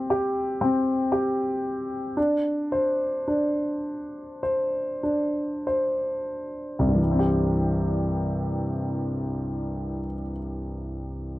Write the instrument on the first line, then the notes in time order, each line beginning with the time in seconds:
grand piano
Already playing: C4 G4
0.10 G4
0.61 C4
1.12 G4
2.17 D4
2.72 C5
3.28 D4
4.43 C5
5.03 D4
5.67 C5
6.79 C2
6.87 G2
6.95 E3
7.03 G3
7.11 C4
7.19 G4